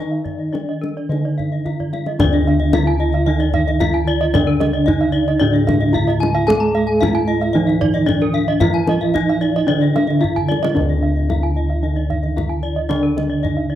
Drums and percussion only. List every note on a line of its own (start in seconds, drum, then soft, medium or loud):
0.26 kendang slap soft
0.26 kendang low soft
0.55 kendang slap soft
0.55 kendang high soft
0.84 kendang slap soft
0.84 kendang high soft
0.98 kendang slap soft
1.12 kendang slap soft
1.12 kendang high soft
1.39 kendang slap soft
1.39 kendang low soft
1.66 kendang slap soft
1.66 kendang low soft
1.80 kendang low soft
1.93 kendang high soft
2.06 kendang high soft
2.20 kendang high medium
2.20 kendang low medium
2.73 kendang slap soft
2.73 kendang high medium
2.73 kendang low medium
3.13 kendang slap soft
3.40 kendang slap soft
3.54 kendang low medium
3.68 kendang slap soft
3.81 kendang high medium
3.81 kendang low medium
3.95 kendang slap soft
4.35 kendang high medium
4.35 kendang low medium
4.61 kendang high medium
4.88 kendang slap soft
4.88 kendang low medium
5.28 kendang slap soft
5.56 kendang slap soft
5.69 kendang high medium
5.69 kendang low medium
5.96 kendang low medium
6.10 kendang slap soft
6.23 kendang high medium
6.50 kendang high medium
6.50 kendang low medium
7.03 kendang slap soft
7.03 kendang high medium
7.03 kendang low medium
7.43 kendang slap soft
7.69 kendang slap soft
7.82 kendang low medium
7.95 kendang slap soft
8.09 kendang high medium
8.09 kendang low medium
8.21 kendang slap soft
8.61 kendang high medium
8.61 kendang low loud
8.87 kendang slap soft
8.87 kendang high medium
9.16 kendang slap soft
9.16 kendang low medium
9.42 kendang slap soft
9.56 kendang slap soft
9.83 kendang slap soft
9.96 kendang slap soft
9.96 kendang high medium
10.10 kendang slap soft
10.24 kendang low soft
10.37 kendang low soft
10.52 kendang high soft
10.64 kendang high medium
10.77 kendang high soft
10.77 kendang low soft
11.30 kendang slap soft
11.30 kendang high soft
11.30 kendang low soft
11.96 kendang slap soft
12.10 kendang low soft
12.24 kendang slap soft
12.38 kendang high soft
12.38 kendang low soft
12.51 kendang slap soft
12.91 kendang high soft
12.91 kendang low medium
13.18 kendang high soft
13.45 kendang slap soft
13.45 kendang low soft